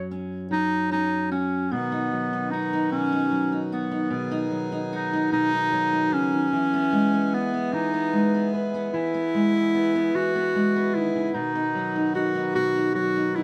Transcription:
0.00 1.71 F#2 medium
0.00 0.50 F#3 medium
0.00 1.31 F#4 medium
0.11 0.90 C#4 medium
0.51 2.11 F#3 medium
0.51 0.88 D#4 loud
0.91 1.67 C#4 medium
0.91 1.29 D#4 loud
1.31 1.73 C#4 medium
1.31 1.67 F#4 medium
1.71 2.92 B2 medium
1.71 6.48 D#3 medium
1.71 13.44 B3 medium
1.71 2.52 B3 medium
1.71 4.09 F#4 medium
1.92 2.33 D#4 medium
2.12 3.30 F#3 medium
2.33 2.73 D#4 medium
2.51 2.91 D#4 medium
2.51 3.71 F#4 medium
2.73 3.11 D#4 medium
2.91 4.09 B2 medium
2.91 3.68 C#4 loud
3.12 3.51 D#4 medium
3.31 4.49 F#3 medium
3.52 3.90 D#4 medium
3.72 4.48 B3 medium
3.72 4.07 F#4 medium
3.91 4.07 D#4 medium
4.10 5.31 B2 medium
4.10 11.29 G#4 medium
4.31 4.71 D#4 medium
4.51 5.71 F#3 medium
4.72 5.12 D#4 medium
4.93 5.30 D#4 medium
4.93 6.48 F#4 medium
5.13 5.52 D#4 medium
5.32 6.12 B2 medium
5.32 6.15 D#4 loud
5.53 5.92 D#4 medium
5.72 6.53 F#3 medium
5.93 6.48 D#4 medium
6.12 6.32 C#3 medium
6.12 7.35 C#4 loud
6.33 6.52 D#3 medium
6.53 11.30 E3 medium
6.53 7.73 E3 medium
6.74 7.13 B3 medium
6.93 8.12 G#3 medium
7.14 7.53 B3 medium
7.33 7.75 B3 medium
7.33 8.53 B4 medium
7.54 7.93 B3 medium
7.73 8.89 E3 medium
7.73 8.53 D#4 loud
7.94 8.34 B3 medium
8.13 8.89 G#3 medium
8.34 8.74 B3 medium
8.54 11.18 B4 medium
8.74 9.14 B3 medium
8.94 10.14 E3 medium
8.94 10.17 E4 loud
9.14 9.55 B3 medium
9.35 10.54 G#3 medium
9.55 9.74 B3 medium
9.75 9.95 B3 medium
9.95 10.35 B3 medium
10.15 10.94 E3 medium
10.15 10.96 F#4 loud
10.36 10.76 B3 medium
10.55 11.30 G#3 medium
10.76 11.55 B3 medium
10.95 11.14 D#3 medium
10.95 11.36 E4 medium
11.15 11.34 C#3 medium
11.34 12.55 B2 medium
11.34 13.44 D#3 medium
11.34 12.14 D#4 medium
11.34 13.44 F#4 medium
11.55 11.95 D#4 medium
11.75 12.94 F#3 medium
11.96 12.14 D#4 medium
12.15 12.35 D#4 medium
12.15 12.52 F#4 medium
12.35 12.75 D#4 medium
12.55 13.44 B2 medium
12.55 12.92 F#4 loud
12.76 13.15 D#4 medium
12.95 13.44 F#3 medium
12.95 13.37 F#4 loud
13.16 13.34 D#4 medium
13.35 13.44 D#4 medium
13.35 13.44 E4 medium

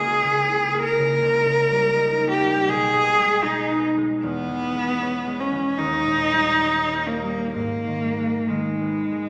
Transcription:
0.00 1.21 C#2 soft
0.00 0.22 C#3 soft
0.00 0.72 A#3 soft
0.00 0.47 E4 soft
0.00 0.81 G#4 medium
0.24 0.97 C#3 soft
0.48 1.25 E4 soft
0.74 2.19 A#3 soft
0.84 2.29 A#4 medium
0.98 1.25 C#3 soft
1.22 2.72 C#2 soft
1.46 2.72 C#3 soft
1.71 2.43 G3 soft
1.95 3.42 D#4 soft
2.20 2.72 A#3 soft
2.31 2.70 G4 medium
2.44 2.71 G3 soft
2.67 4.26 B1 soft
2.67 3.45 G#4 medium
2.93 4.26 B2 soft
3.19 3.96 G#3 soft
3.44 4.26 D#4 soft
3.44 3.83 D#4 medium
3.70 4.26 B3 soft
3.98 4.74 G#3 soft
4.23 5.83 E2 soft
4.23 5.41 B3 medium
4.49 5.52 E3 soft
4.76 5.25 G#3 soft
5.02 6.60 C#4 soft
5.27 5.82 G#3 soft
5.40 5.80 C#4 medium
5.53 5.83 E3 soft
5.78 7.58 D#2 soft
5.78 7.08 D#4 medium
6.05 7.58 A#2 soft
6.33 7.22 G3 soft
6.61 7.58 C#4 soft
6.92 7.58 A#3 soft
7.07 7.53 A#3 medium
7.23 7.59 G3 soft
7.53 9.29 G#2 soft
7.53 8.50 A#3 medium
7.87 8.49 D#3 soft
8.18 9.11 G#3 soft
8.48 9.29 D#3 soft
8.48 9.29 G#3 soft
8.81 9.29 B3 soft
9.12 9.29 G#3 soft

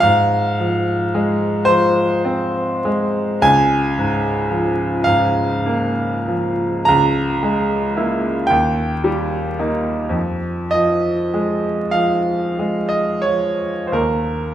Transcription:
0.00 3.40 G#2 medium
0.00 1.66 F5 loud
0.60 1.47 F3 soft
1.15 2.02 G#3 soft
1.65 2.61 F3 soft
1.65 3.44 C5 medium
2.25 3.23 C4 soft
2.85 3.45 G#3 soft
3.42 6.82 C#2 medium
3.42 5.05 G#5 loud
3.98 4.84 G#2 soft
4.50 5.41 F3 soft
5.04 6.03 G#2 soft
5.04 6.86 F5 medium
5.66 6.65 A#3 soft
6.28 6.88 F3 soft
6.85 8.45 C#2 medium
6.85 8.47 A#5 medium
7.43 8.27 G#3 soft
7.96 8.45 A#3 soft
7.96 8.45 E4 soft
8.47 10.12 D#2 medium
8.47 10.14 G5 medium
9.04 9.93 G3 soft
9.59 10.11 A#3 soft
9.59 10.11 D#4 soft
10.09 13.90 F2 soft
10.71 11.69 F3 soft
10.71 11.93 D#5 medium
11.34 12.33 G#3 soft
11.91 13.00 F3 soft
11.91 12.92 F5 medium
12.59 13.69 G#3 soft
12.89 13.25 D#5 medium
13.22 13.96 F3 soft
13.22 13.84 C#5 medium
13.87 13.97 C5 soft
13.92 14.54 D#2 soft
13.92 14.54 A#4 medium

